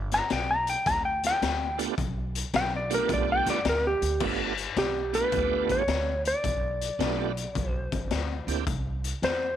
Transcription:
0.00 0.18 G1 medium
0.11 0.31 A#5 loud
0.11 snare soft
0.11 closed hi-hat medium
0.30 0.74 B1 medium
0.30 0.49 G5 medium
0.30 snare medium
0.30 closed hi-hat medium
0.51 0.67 A#5 loud
0.67 0.86 G5 loud
0.67 closed hi-hat medium
0.86 1.30 D2 medium
0.86 1.04 A#5 loud
0.86 kick loud
0.86 snare soft
0.86 closed hi-hat medium
1.05 1.23 G5 loud
1.23 1.79 G5 loud
1.23 snare soft
1.23 closed hi-hat medium
1.42 1.86 D2 medium
1.42 snare loud
1.42 closed hi-hat medium
1.78 1.95 A3 medium
1.78 1.95 B3 medium
1.78 1.95 D4 medium
1.78 1.95 F4 medium
1.78 1.95 G4 medium
1.78 closed hi-hat medium
1.98 2.42 B1 medium
1.98 kick loud
1.98 closed hi-hat medium
2.35 closed hi-hat medium
2.54 2.97 B1 medium
2.54 2.72 G5 loud
2.54 snare loud
2.54 closed hi-hat medium
2.76 2.92 D5 medium
2.90 3.61 A3 medium
2.90 3.61 B3 medium
2.90 3.61 D4 medium
2.90 3.61 F4 medium
2.90 3.61 G4 medium
2.90 closed hi-hat medium
2.94 3.10 A#4 loud
3.09 3.39 B1 loud
3.09 kick loud
3.09 closed hi-hat medium
3.14 3.29 D5 loud
3.32 3.48 G5 loud
3.46 3.61 G1 medium
3.46 3.66 D5 loud
3.46 snare soft
3.46 closed hi-hat medium
3.65 3.94 D2 medium
3.65 snare loud
3.65 closed hi-hat medium
3.69 3.85 A#4 medium
3.87 4.21 G4 loud
4.02 4.16 D2 medium
4.02 closed hi-hat medium
4.20 4.65 G1 medium
4.20 4.54 A3 medium
4.20 4.53 B3 medium
4.20 4.54 D4 medium
4.20 4.54 F4 medium
4.20 4.54 G4 medium
4.20 kick loud
4.20 crash medium
4.57 closed hi-hat medium
4.76 5.20 B1 medium
4.76 5.15 G4 medium
4.76 snare medium
4.76 closed hi-hat medium
5.13 5.84 A3 medium
5.13 5.83 B3 medium
5.13 5.84 D4 medium
5.13 5.84 F4 medium
5.13 5.84 G4 medium
5.13 5.71 B4 medium
5.13 closed hi-hat medium
5.32 5.76 D2 medium
5.32 kick medium
5.32 closed hi-hat medium
5.69 6.22 C#5 medium
5.69 kick medium
5.69 closed hi-hat medium
5.88 6.32 D2 medium
5.88 snare loud
5.88 closed hi-hat medium
6.25 7.69 D5 medium
6.25 closed hi-hat medium
6.44 6.88 B1 medium
6.44 kick medium
6.44 closed hi-hat medium
6.81 closed hi-hat medium
6.99 7.43 B1 medium
6.99 7.32 A3 medium
6.99 7.32 B3 soft
6.99 7.33 D4 medium
6.99 7.33 F4 medium
6.99 7.33 G4 medium
6.99 snare loud
6.99 closed hi-hat medium
7.37 closed hi-hat medium
7.55 7.85 B1 medium
7.55 kick loud
7.55 closed hi-hat medium
7.69 8.45 C5 medium
7.92 8.07 G1 medium
7.92 kick medium
7.92 closed hi-hat medium
8.11 8.40 D2 medium
8.11 snare loud
8.11 closed hi-hat medium
8.47 8.62 D2 medium
8.47 8.65 A#3 medium
8.47 8.64 C4 medium
8.47 8.65 D4 medium
8.47 8.65 E4 medium
8.47 8.65 G4 medium
8.47 closed hi-hat medium
8.67 9.11 C2 medium
8.67 kick loud
8.67 closed hi-hat medium
9.04 closed hi-hat medium
9.22 9.56 E2 medium
9.22 9.56 C5 medium
9.22 snare medium
9.22 closed hi-hat medium

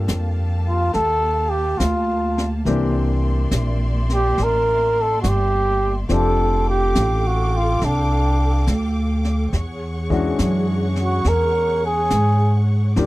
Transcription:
0.00 1.62 G3 soft
0.00 1.63 A#3 soft
0.00 6.08 A#3 medium
0.00 1.63 D4 soft
0.00 1.63 F4 soft
0.00 2.64 G4 medium
0.00 1.63 A4 medium
0.00 2.64 F5 medium
0.00 2.64 A5 medium
0.08 0.91 F2 medium
0.08 snare soft
0.08 hi-hat pedal medium
0.69 0.93 F4 medium
0.94 1.78 D#2 medium
0.94 1.51 A4 medium
0.94 brush sweep soft
0.94 snare soft
1.50 1.80 G4 medium
1.78 2.63 D2 medium
1.78 2.51 F4 medium
1.78 snare medium
1.78 hi-hat pedal soft
2.38 snare soft
2.65 3.49 C2 medium
2.65 5.07 E3 soft
2.65 5.07 A#3 soft
2.65 5.07 C4 soft
2.65 5.08 D4 soft
2.65 5.08 G4 medium
2.65 6.07 D5 medium
2.65 6.07 E5 medium
2.65 6.07 C6 medium
2.65 brush sweep soft
2.65 snare soft
3.51 4.35 A#1 medium
3.51 snare medium
3.51 hi-hat pedal soft
4.09 snare soft
4.14 4.44 G4 medium
4.38 5.21 A1 medium
4.38 brush sweep soft
4.38 snare soft
4.43 5.03 A#4 medium
5.02 5.21 A4 medium
5.22 6.07 G1 medium
5.22 5.30 F#4 medium
5.22 snare soft
5.22 hi-hat pedal medium
5.28 5.98 G4 medium
6.08 6.93 F1 medium
6.08 8.50 F3 soft
6.08 8.50 A3 soft
6.08 8.51 C4 soft
6.08 8.51 D4 soft
6.08 8.51 G4 soft
6.08 9.49 A4 medium
6.08 9.50 F5 medium
6.08 9.50 G5 medium
6.08 9.49 D6 medium
6.08 brush sweep soft
6.08 snare soft
6.14 6.66 A4 medium
6.69 7.29 G4 medium
6.95 7.79 A1 medium
6.95 snare medium
6.95 hi-hat pedal soft
7.27 7.58 F#4 medium
7.57 7.86 F4 medium
7.81 8.65 C2 medium
7.81 8.69 D4 medium
7.81 brush sweep soft
7.81 snare soft
8.67 9.51 D2 medium
8.67 snare soft
8.67 hi-hat pedal soft
9.24 snare soft
9.53 10.37 E2 medium
9.53 12.93 G#4 medium
9.53 12.94 C#5 medium
9.53 12.93 F#5 medium
9.53 12.94 C#6 medium
9.53 brush sweep soft
9.53 snare soft
10.10 10.36 E3 medium
10.10 10.36 G#3 medium
10.10 10.37 C#4 soft
10.10 10.37 D4 soft
10.10 10.38 F#4 medium
10.10 kick soft
10.39 11.23 F#2 medium
10.39 snare soft
10.39 hi-hat pedal soft
10.96 snare soft
11.03 11.30 F#4 medium
11.24 12.09 E2 medium
11.24 11.84 A#4 medium
11.24 brush sweep soft
11.24 snare soft
11.86 12.66 G#4 medium
12.10 12.95 G#2 medium
12.10 snare soft
12.10 hi-hat pedal soft
12.96 13.06 D#2 medium
12.96 13.06 F3 medium
12.96 13.06 A#3 soft
12.96 13.06 D4 soft
12.96 13.06 D#4 soft
12.96 13.06 G4 medium
12.96 13.06 G4 soft
12.96 13.06 D5 medium
12.96 13.06 F5 medium
12.96 13.06 D6 medium
12.96 brush sweep soft
12.96 snare soft

